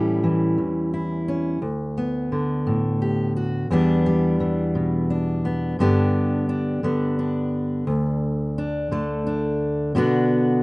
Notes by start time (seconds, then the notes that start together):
Already playing: A2 E3 G3 C#4 E4
0.23 E3
0.58 E2
0.94 E4
1.28 C#4
1.62 D2
1.98 B3
2.32 D3
2.67 A2
3.02 G4
3.37 F#4
3.70 E2 E3 G3 B3 D4
4.06 G3
4.40 E3
4.75 B2
5.10 D4
5.45 B3
5.79 G2 D3 B3 D4 G4
6.49 D4
6.83 D3 B3
7.19 D4
7.87 D2
8.58 D4
8.91 D3 A3
9.27 D4
9.95 B2 D3 B3 D4 F#4